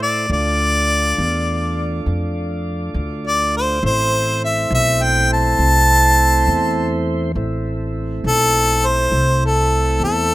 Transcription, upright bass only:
0.00 0.27 A2 medium
0.30 1.15 D2 medium
1.18 2.04 E2 medium
2.06 2.92 F2 medium
2.94 3.80 D2 medium
3.83 4.68 A1 medium
4.70 5.56 B1 medium
5.59 6.44 C2 medium
6.47 7.33 E2 medium
7.35 8.21 A1 medium
8.24 9.09 B1 medium
9.12 9.97 C2 medium
10.00 10.35 E2 medium

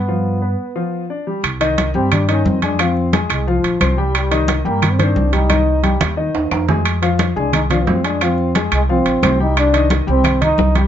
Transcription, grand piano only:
0.08 0.36 F3 medium
0.08 0.36 F4 medium
0.42 0.70 B3 medium
0.42 0.70 B4 medium
0.76 1.04 F3 medium
0.76 1.04 F4 medium
1.10 1.24 D4 medium
1.10 1.24 D5 medium
1.27 1.41 G3 medium
1.27 1.41 G4 medium
1.61 1.89 D#3 medium
1.61 1.89 D#4 medium
1.61 1.89 D#5 medium
1.95 2.23 G3 medium
1.95 2.23 G4 medium
1.95 2.23 G5 medium
2.28 2.56 D#3 medium
2.28 2.57 D#4 medium
2.28 2.57 D#5 medium
2.63 2.77 G#3 medium
2.63 2.77 G#4 medium
2.63 2.77 G#5 medium
2.79 3.07 F3 medium
2.79 3.08 F4 medium
2.79 3.08 F5 medium
3.13 3.41 G#3 medium
3.13 3.41 G#4 medium
3.13 3.41 G#5 medium
3.47 3.75 F3 medium
3.47 3.75 F4 medium
3.47 3.75 F5 medium
3.81 3.95 C4 medium
3.81 3.95 C5 medium
3.81 3.95 C6 medium
3.97 4.25 G3 medium
3.97 4.26 G4 medium
3.97 4.26 G5 medium
4.31 4.59 D#3 medium
4.31 4.59 D#4 medium
4.31 4.60 D#5 medium
4.65 4.93 G3 medium
4.65 4.93 G4 medium
4.65 4.93 G5 medium
4.99 5.27 D#3 medium
4.99 5.27 C4 medium
4.99 5.28 C5 medium
5.32 5.47 G3 medium
5.32 5.47 G4 medium
5.32 5.47 G5 medium
5.49 5.77 D#3 medium
5.49 5.78 D#4 medium
5.49 5.78 D#5 medium
5.83 6.11 G3 medium
5.83 6.12 G4 medium
5.83 6.12 G5 medium
6.17 6.45 D#3 medium
6.17 6.46 D#4 medium
6.17 6.46 D#5 medium
6.52 6.66 A#3 medium
6.52 6.66 A#4 medium
6.52 6.66 A#5 medium
6.69 6.97 G#3 medium
6.69 6.97 G#4 medium
6.69 6.97 G#5 medium
7.02 7.30 F3 medium
7.02 7.31 F4 medium
7.02 7.31 F5 medium
7.36 7.64 G#3 medium
7.36 7.64 G#4 medium
7.36 7.64 G#5 medium
7.70 7.98 F3 medium
7.70 7.98 F4 medium
7.70 7.99 F5 medium
8.04 8.18 G#3 medium
8.04 8.18 G#4 medium
8.04 8.19 G#5 medium
8.22 8.49 F3 medium
8.22 8.50 F4 medium
8.22 8.50 F5 medium
8.55 8.83 G#3 medium
8.55 8.83 G#4 medium
8.55 8.84 G#5 medium
8.89 9.17 F3 medium
8.89 9.17 F4 medium
8.89 9.17 F5 medium
9.23 9.37 C4 medium
9.23 9.37 C5 medium
9.23 9.37 C6 medium
9.40 9.68 G3 medium
9.40 9.68 G4 medium
9.40 9.68 G5 medium
9.73 10.01 D#3 medium
9.73 10.01 D#4 medium
9.73 10.02 D#5 medium
10.07 10.35 G3 medium
10.07 10.35 G4 medium
10.07 10.35 G5 medium
10.41 10.69 D#3 medium
10.41 10.69 D#4 medium
10.41 10.69 D#5 medium
10.75 10.87 G3 medium
10.75 10.87 G4 medium
10.75 10.87 G5 medium

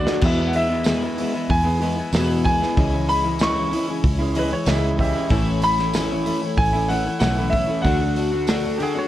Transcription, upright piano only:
0.00 0.23 D5 loud
0.25 0.55 E5 medium
4.39 4.52 B4 medium
4.53 4.67 C#5 medium
4.68 4.98 E5 medium
5.00 5.44 G4 medium
5.00 5.46 E5 medium
8.78 8.81 G4 medium
8.82 8.96 G#4 medium
8.98 9.08 C#5 medium

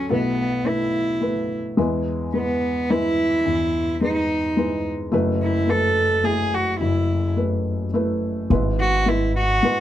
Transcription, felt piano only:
0.00 0.12 D2 soft
0.00 0.12 D3 medium
0.00 0.12 F#3 medium
0.00 0.12 D4 medium
0.00 0.12 F#4 medium
0.00 0.12 A4 medium
0.09 1.74 B1 medium
0.09 1.74 B2 medium
0.09 0.58 A3 medium
0.09 0.58 E4 medium
0.09 0.58 B4 medium
0.65 1.13 A3 medium
0.65 1.13 E4 soft
0.65 1.14 B4 medium
1.21 1.78 A3 medium
1.21 1.76 E4 soft
1.21 1.77 B4 medium
1.77 3.42 E2 medium
1.77 3.42 E3 medium
1.77 2.26 G#3 medium
1.77 2.26 E4 medium
1.77 2.27 B4 medium
2.34 2.82 G#3 soft
2.34 2.83 E4 soft
2.34 2.83 B4 medium
2.90 3.86 G#3 medium
2.90 3.86 E4 medium
2.90 3.86 B4 medium
3.46 5.09 E2 soft
3.46 5.09 E3 medium
4.01 4.49 G#3 medium
4.01 4.50 G#4 medium
4.01 4.50 B4 medium
4.57 5.13 G#3 medium
4.57 5.11 E4 medium
4.57 5.12 B4 medium
5.12 6.76 F#1 medium
5.12 6.76 F#2 medium
5.12 5.60 A3 medium
5.12 5.60 E4 medium
5.12 5.61 B4 medium
5.67 6.16 A3 medium
5.67 6.16 E4 soft
5.67 6.16 B4 medium
6.24 7.20 A3 medium
6.24 7.20 E4 medium
6.24 7.21 G#4 medium
6.81 8.46 F#1 medium
6.81 8.46 F#2 medium
7.36 7.85 A3 medium
7.36 7.85 E4 soft
7.36 7.85 B4 medium
7.94 8.50 A3 medium
7.94 8.49 E4 medium
7.94 8.51 B4 medium
8.50 9.80 G#1 medium
8.50 9.80 G#2 medium
8.50 8.98 G#3 medium
8.50 8.98 E4 medium
8.50 8.99 B4 medium
9.06 9.54 G#3 medium
9.06 9.55 E4 soft
9.06 9.55 B4 medium
9.63 9.80 G#3 medium
9.63 9.80 E4 soft
9.63 9.80 B4 medium

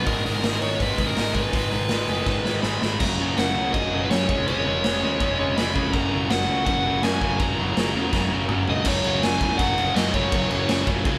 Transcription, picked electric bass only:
0.06 0.20 G#1 medium
0.26 0.40 G#1 medium
0.44 0.57 G#1 medium
0.62 0.76 G#1 medium
0.80 0.94 G#1 medium
0.98 1.12 G#1 medium
1.18 1.45 G#1 medium
1.53 1.67 G#1 medium
1.72 1.86 G#1 medium
1.90 2.04 G#1 medium
2.08 2.22 F#1 medium
2.26 2.40 G#1 medium
2.44 2.58 G#1 medium
2.63 2.77 G#1 medium
2.82 2.96 G#1 medium
3.01 3.18 F#1 medium
3.19 3.36 F#1 medium
3.36 3.54 F#1 medium
3.55 3.73 C#2 medium
3.74 4.09 F#1 medium
4.12 4.30 F#2 medium
4.29 4.46 F1 medium
4.48 4.65 F1 medium
4.66 4.83 F1 medium
4.85 5.02 F1 medium
5.03 5.20 D#2 medium
5.21 5.55 F1 medium
5.58 5.75 F1 medium
5.76 5.93 F1 medium
5.93 6.11 F#1 medium
6.11 6.29 F#1 medium
6.30 6.48 F#1 loud
6.48 6.65 C#2 medium
6.66 7.01 F#1 medium
7.03 7.20 F#2 medium
7.21 7.39 F#1 medium
7.40 7.57 F#1 medium
7.57 7.75 F#1 medium
7.76 7.94 F#1 medium
7.95 8.12 E2 medium
8.13 8.48 F#1 medium
8.50 8.67 F#1 medium
8.68 8.85 F#1 medium
8.86 9.00 F#1 medium
9.05 9.19 F#1 medium
9.23 9.37 F#1 loud
9.41 9.55 E2 loud
9.59 9.88 F#1 medium
9.95 10.10 F#2 medium
10.14 10.28 F#1 medium
10.32 10.47 F#1 loud
10.51 10.65 F#1 medium
10.69 10.83 F#1 medium
10.87 11.01 F#1 loud
11.05 11.18 C#2 loud

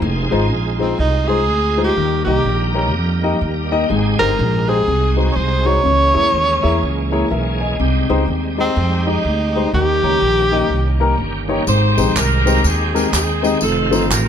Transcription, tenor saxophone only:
0.81 0.98 C4 medium
1.00 1.29 D#4 medium
1.28 1.84 G#4 loud
1.84 2.22 G4 medium
2.24 2.70 G4 medium
4.19 4.70 A#4 loud
4.69 5.17 G#4 loud
5.32 5.68 C5 loud
5.32 5.37 C#5 medium
5.66 7.12 C#5 loud
8.60 9.10 C4 medium
9.08 9.74 D#4 medium
9.75 11.16 G4 loud

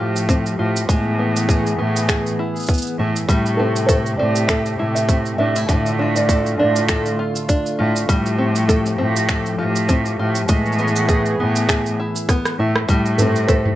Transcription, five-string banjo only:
0.00 0.89 G3 medium
0.00 0.28 C4 medium
0.00 0.58 F4 medium
0.00 0.95 A4 medium
0.29 0.96 C4 medium
0.59 0.96 F4 medium
0.89 3.29 G#3 medium
1.19 1.77 B3 medium
1.49 2.08 G#4 medium
1.79 2.68 B3 medium
2.09 3.36 G#4 medium
2.39 2.99 E4 medium
2.69 2.99 B3 medium
2.99 4.39 E4 medium
3.29 5.69 G3 medium
3.59 4.18 C4 medium
3.89 4.49 A4 medium
4.19 5.08 C4 medium
4.50 5.90 A4 medium
4.79 5.39 E4 medium
5.10 5.76 C4 medium
5.40 5.56 D4 medium
5.56 5.76 E4 soft
5.69 8.08 D3 medium
5.99 6.58 D4 medium
6.30 6.89 A4 medium
6.59 6.88 D4 medium
6.89 7.48 A4 medium
7.19 7.79 F4 medium
7.49 8.15 D4 medium
7.79 9.19 F4 medium
8.09 10.49 G3 medium
8.38 8.97 C4 medium
8.68 9.28 A4 medium
8.98 9.88 C4 medium
9.29 10.56 A4 medium
9.58 10.18 F4 medium
9.89 10.56 C4 medium
10.19 10.56 F4 medium
10.49 12.89 G#3 medium
10.79 11.39 B3 medium
11.09 11.68 G#4 medium
11.40 12.29 B3 medium
11.69 12.96 G#4 medium
12.00 12.60 E4 medium
12.30 12.59 B3 medium
12.60 13.75 E4 medium
12.90 13.75 G3 medium
13.20 13.75 C4 medium
13.49 13.75 A4 medium

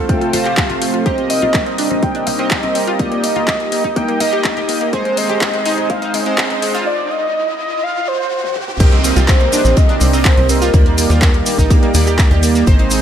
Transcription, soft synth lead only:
0.00 0.11 F5 loud
0.09 0.35 G5 loud
0.33 0.82 F5 loud
1.06 1.17 C5 medium
1.30 1.75 D#5 medium
1.78 2.04 D#5 loud
2.03 2.28 G5 loud
2.27 2.75 D#5 loud
3.00 3.22 D5 medium
3.24 3.69 D#5 medium
3.72 3.98 D#5 loud
3.96 4.22 G5 loud
4.20 4.69 D#5 loud
4.93 5.19 C5 medium
5.17 5.65 D#5 loud
5.66 5.91 D#5 loud
5.90 6.16 F5 loud
6.14 6.62 D#5 loud
6.87 7.12 D5 loud
7.11 7.58 D#5 loud
7.59 7.85 D#5 loud
7.83 8.09 F5 loud
8.08 8.56 C5 loud
9.29 9.79 C5 loud
9.77 10.03 D#5 loud
10.01 10.27 D5 loud
10.25 10.51 C5 loud
10.49 12.43 A#4 loud

